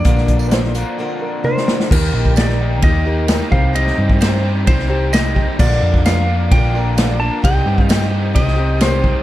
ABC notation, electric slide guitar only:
X:1
M:4/4
L:1/8
Q:1/4=130
K:Cm
V:1 name="Electric slide guitar"
d6 c2 | B2 d2 e3 f | e2 c2 c2 e2 | d2 f2 g3 =a |
g2 e2 e2 c2 |]